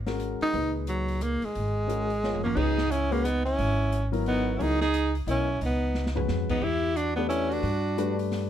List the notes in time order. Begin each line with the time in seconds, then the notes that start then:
Already playing: G#1
0.06 G#3 C#4 F#4 A#4, snare, open hi-hat
0.20 closed hi-hat
0.40 D#4, muted upright bass stroke, open hi-hat
0.53 C#2 A#2 D#4 G#4 B4, open hi-hat
0.87 F#3, closed hi-hat
1.08 open hi-hat
1.21 A#3, closed hi-hat
1.42 G#3, muted upright bass stroke, open hi-hat
1.55 G#1, open hi-hat
1.88 G#3 C#4 F#4 A#4, closed hi-hat
2.10 open hi-hat
2.24 B3 F4 A#4 C#5, snare
2.34 floor tom
2.43 A#3 C#4, floor tom
2.56 C#2 G#3 C#4 D#4 F#4 G#4 B4, kick, crash
2.78 snare
2.90 C#4 E4, closed hi-hat
3.11 G#3 A#3 C#4 F#4 B4, open hi-hat
3.24 B3 D#4, closed hi-hat
3.45 C#4 E4, open hi-hat
3.58 G#1, open hi-hat
3.92 closed hi-hat
4.12 F#3 B3 E4 A#4, open hi-hat
4.26 B3 D#4, open hi-hat
4.57 F#3 B3 C#4 E4, open hi-hat
4.61 C#2 D#4 G#4 A#4
4.81 D#4 G#4, snare
4.94 closed hi-hat
5.15 open hi-hat
5.26 B1 B3 C#4 E4 A#4 D#5, closed hi-hat
5.61 C#2 D#4, open hi-hat
5.65 B3
5.95 snare
6.06 snare
6.15 G#3 C#4 F#4 B4, floor tom
6.28 F2, snare
6.49 B3 D#4, kick, crash
6.61 E2 E4 G4
6.95 D4 F#4, closed hi-hat
7.16 A3 B3 D4 G4 B4
7.29 C#4 E4, closed hi-hat
7.49 D4 F#4, open hi-hat
7.63 G2, open hi-hat
7.98 A3 D4 G4 B4, closed hi-hat
8.19 open hi-hat
8.32 snare, open hi-hat